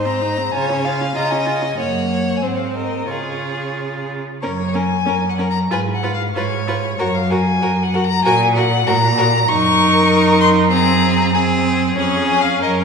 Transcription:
Already playing: cello G#2, violin C5
0.05 viola C4, violin A#5
0.21 viola D#4
0.38 viola C4
0.52 cello C#3, viola F4, violin C#5 G#5
0.69 viola C#4
0.85 viola F4, violin F5
1.01 viola C#4
1.15 cello C#3, viola F4, violin D#5 A#5
1.30 viola C#4, violin G#5
1.46 viola F4
1.62 viola C#4
1.77 cello F#2, viola A#3, violin C#5 F#5
2.37 violin G#5
2.42 cello G#2, viola C4, violin C5
2.47 violin F#5
2.56 violin F5
2.65 violin F#5
2.74 violin A#4 D#5
3.07 cello C#3, viola F4, violin G#4 C#5
4.42 cello F#2, viola C#4, violin A#4 C#5
4.74 viola C#4, violin A#4 G#5
5.06 cello F#2, viola C#4, violin A#4
5.29 violin F#5
5.38 viola C#4, violin A#4
5.50 violin A#5
5.71 cello G#2, viola F4, violin B4 G#5
5.94 violin F#5
6.03 viola F4, violin B4
6.14 violin F5
6.35 cello G#2, viola F4, violin B4 C#5
6.67 viola F4, violin B4
6.98 cello F#2, viola F#4, violin A#4 C#5
7.15 violin F5
7.30 viola F#4, violin A#4 G#5
7.62 cello F#2, viola F#4, violin A#4
7.83 violin F#5
7.94 viola F#4, violin A#4
8.04 violin A#5
8.25 cello A#2, viola F#4, violin A#4 G#5
8.55 viola F#4, violin A#4 F#5
8.87 cello A#2, viola F#4, violin A#4 A#5
9.18 viola F#4, violin A#4
9.48 cello F#2, viola D#4, violin A#4 C#6
10.40 violin C6
10.70 viola C4, violin G#4 A#5
11.33 viola C4, violin G#4 G#5
11.96 cello F2, viola C#4, violin G#4 C#5
12.28 violin G#5
12.41 violin F5
12.61 cello F#2, viola C#4, violin A#4 D#5

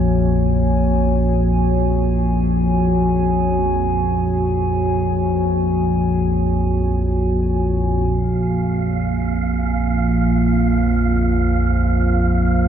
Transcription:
Already playing: synth drone A#1 F2, analog synth pad A#3 F#4 C#5 G#5
8.07 synth drone A#1 F2, analog synth pad A#3, synth texture F5
9.81 analog synth pad F4
11.22 analog synth pad C5

